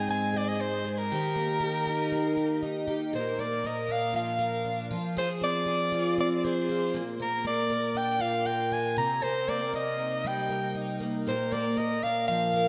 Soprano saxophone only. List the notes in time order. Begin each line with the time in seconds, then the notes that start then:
0.10 G#5
0.37 D5
0.48 D#5
0.61 C5
0.91 C5
0.98 A#4
3.15 C5
3.40 D5
3.67 D#5
3.92 F5
4.16 F5
5.18 C5
5.43 D5
6.20 D5
6.36 D5
6.44 C5
7.22 A#4
7.47 D5
7.97 G5
8.21 F5
8.46 G5
8.73 G#5
8.98 A#5
9.23 C5
9.49 D5
9.75 D#5
10.27 G5
11.28 C5
11.52 D5
11.78 D#5
12.03 F5
12.28 F5